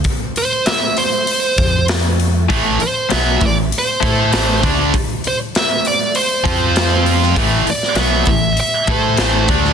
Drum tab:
HH |o-o-o-o-o-o-o-o-|o-o-o-o-o-o-o-o-|o-o-o-o-o-o-o-o-|o-o-o-o-o-o-o-o-|
SD |----o-------o---|----o-------o---|----o-------o--o|---oo-------o--o|
BD |o---------o-----|o-----o---o---o-|o---------o-----|o-----o---o---o-|